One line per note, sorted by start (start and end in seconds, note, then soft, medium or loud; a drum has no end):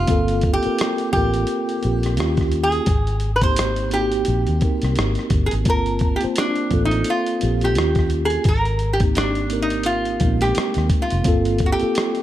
0.00 0.07 A#3 medium
0.00 0.08 C4 medium
0.00 0.11 D#4 medium
0.00 0.51 F4 medium
0.00 0.10 G4 medium
0.00 0.11 A#4 medium
0.07 0.56 G1 medium
0.07 0.55 A#3 medium
0.07 0.56 C4 medium
0.07 0.56 F4 medium
0.07 0.57 A4 medium
0.07 kick medium
0.07 closed hi-hat medium
0.28 closed hi-hat soft
0.41 kick medium
0.41 closed hi-hat soft
0.54 1.08 G4 medium
0.62 1.06 A#3 medium
0.62 1.07 C4 medium
0.62 1.08 F4 medium
0.62 1.08 A#4 medium
0.62 closed hi-hat soft
0.66 muted fingered electric bass stroke soft
0.79 cross-stick medium
0.79 closed hi-hat medium
0.98 closed hi-hat soft
1.12 1.44 A1 medium
1.12 1.74 A#3 medium
1.12 1.75 C4 medium
1.12 1.76 F4 medium
1.12 2.48 G4 medium
1.12 kick medium
1.12 closed hi-hat soft
1.16 1.77 A#4 medium
1.34 closed hi-hat soft
1.47 closed hi-hat medium
1.69 closed hi-hat soft
1.82 2.20 A#1 medium
1.82 2.16 A#3 medium
1.82 2.18 C4 medium
1.82 2.18 F4 soft
1.82 2.19 G4 medium
1.82 closed hi-hat soft
2.03 cross-stick soft
2.03 closed hi-hat soft
2.17 2.79 D#2 medium
2.17 2.79 A#3 medium
2.17 2.80 C#4 medium
2.17 2.81 F4 medium
2.17 cross-stick medium
2.17 closed hi-hat medium
2.21 2.81 G4 medium
2.37 kick medium
2.37 cross-stick soft
2.37 closed hi-hat soft
2.52 closed hi-hat medium
2.63 3.30 G#4 medium
2.72 closed hi-hat soft
2.86 4.23 G#1 medium
2.86 kick loud
2.86 closed hi-hat medium
3.07 closed hi-hat soft
3.20 closed hi-hat soft
3.36 3.43 B4 medium
3.41 3.86 A#3 medium
3.41 3.86 C4 medium
3.41 3.87 D#4 soft
3.41 3.87 G4 medium
3.41 3.89 C5 medium
3.41 kick medium
3.41 closed hi-hat soft
3.56 cross-stick medium
3.56 closed hi-hat medium
3.76 closed hi-hat soft
3.91 4.54 A#3 medium
3.91 4.54 C4 medium
3.91 4.55 D#4 medium
3.91 4.93 G4 medium
3.91 closed hi-hat soft
3.95 4.01 F#4 medium
4.01 4.59 G4 medium
4.12 closed hi-hat soft
4.25 4.45 A#1 medium
4.25 closed hi-hat medium
4.47 4.60 D#2 medium
4.47 closed hi-hat soft
4.60 5.54 A#3 medium
4.60 5.55 C4 medium
4.60 5.56 D#4 medium
4.60 5.56 A#4 medium
4.60 kick medium
4.60 closed hi-hat soft
4.82 4.95 C2 medium
4.82 cross-stick soft
4.82 closed hi-hat soft
4.96 5.15 G#1 medium
4.96 cross-stick medium
4.96 closed hi-hat medium
5.15 cross-stick soft
5.15 closed hi-hat soft
5.30 5.49 G1 medium
5.30 kick medium
5.30 closed hi-hat medium
5.46 5.52 G#4 medium
5.51 5.67 G#1 medium
5.51 closed hi-hat soft
5.65 6.14 G1 medium
5.65 6.13 A#3 medium
5.65 6.14 C4 medium
5.65 6.14 F4 medium
5.65 kick medium
5.65 closed hi-hat medium
5.69 6.16 A#4 medium
5.69 6.15 A5 medium
5.86 closed hi-hat soft
5.99 kick medium
5.99 closed hi-hat soft
6.16 6.22 G4 medium
6.20 6.65 A#3 medium
6.20 6.65 C4 medium
6.20 6.66 F4 medium
6.20 6.67 C5 medium
6.20 muted fingered electric bass stroke soft
6.20 closed hi-hat soft
6.36 6.85 D4 medium
6.36 cross-stick loud
6.36 closed hi-hat medium
6.56 closed hi-hat soft
6.70 7.02 A1 medium
6.70 7.33 A#3 medium
6.70 7.33 C4 medium
6.70 7.34 F4 medium
6.70 7.34 A4 medium
6.70 kick medium
6.70 closed hi-hat soft
6.85 7.08 D#4 medium
6.91 closed hi-hat soft
7.04 closed hi-hat medium
7.10 7.64 F4 medium
7.26 closed hi-hat soft
7.40 7.78 A#1 medium
7.40 7.73 A#3 medium
7.40 7.76 C4 soft
7.40 7.76 F4 soft
7.40 closed hi-hat medium
7.44 7.77 G4 medium
7.61 8.09 G4 medium
7.61 cross-stick soft
7.61 closed hi-hat soft
7.75 8.37 D#2 medium
7.75 8.37 A#3 medium
7.75 8.38 C#4 medium
7.75 8.39 F4 medium
7.75 8.39 G4 medium
7.75 cross-stick medium
7.75 closed hi-hat medium
7.95 kick medium
7.95 cross-stick soft
7.95 closed hi-hat soft
8.10 closed hi-hat medium
8.25 8.46 G#4 medium
8.30 closed hi-hat soft
8.44 10.16 G#1 medium
8.44 kick medium
8.44 closed hi-hat medium
8.48 8.95 A#4 medium
8.65 closed hi-hat soft
8.79 closed hi-hat soft
8.93 8.99 G4 medium
9.00 9.44 A#3 medium
9.00 9.45 C4 medium
9.00 9.45 D#4 medium
9.00 kick medium
9.00 closed hi-hat soft
9.04 9.46 G4 medium
9.15 9.62 D4 medium
9.15 cross-stick loud
9.15 closed hi-hat medium
9.35 closed hi-hat soft
9.49 10.12 A#3 medium
9.49 10.13 C4 medium
9.49 10.13 D#4 medium
9.49 10.14 A#4 medium
9.49 closed hi-hat medium
9.62 9.86 D#4 medium
9.70 closed hi-hat soft
9.83 10.43 F4 medium
9.83 closed hi-hat medium
10.05 closed hi-hat soft
10.19 10.51 A#1 medium
10.19 11.15 G#3 medium
10.19 11.13 A#3 medium
10.19 10.28 B3 soft
10.19 11.14 D#4 medium
10.19 kick medium
10.19 closed hi-hat soft
10.27 11.17 C4 medium
10.41 10.87 G4 medium
10.41 cross-stick soft
10.41 closed hi-hat soft
10.55 muted fingered electric bass stroke soft
10.55 cross-stick medium
10.55 closed hi-hat medium
10.74 10.89 D#2 medium
10.74 cross-stick soft
10.74 closed hi-hat soft
10.90 kick medium
10.90 closed hi-hat soft
11.02 11.66 F4 medium
11.10 11.24 F1 medium
11.10 closed hi-hat soft
11.24 11.73 G1 medium
11.24 11.71 A#3 medium
11.24 11.72 C4 medium
11.24 11.73 F4 medium
11.24 11.73 A4 medium
11.24 kick medium
11.24 closed hi-hat medium
11.45 closed hi-hat soft
11.58 kick medium
11.58 closed hi-hat soft
11.66 11.72 F#4 medium
11.72 12.23 G4 medium
11.79 12.23 A#3 medium
11.79 12.23 C4 medium
11.79 12.23 F4 medium
11.79 12.23 A4 medium
11.79 muted fingered electric bass stroke soft
11.79 closed hi-hat soft
11.95 cross-stick loud
11.95 closed hi-hat medium
12.15 closed hi-hat soft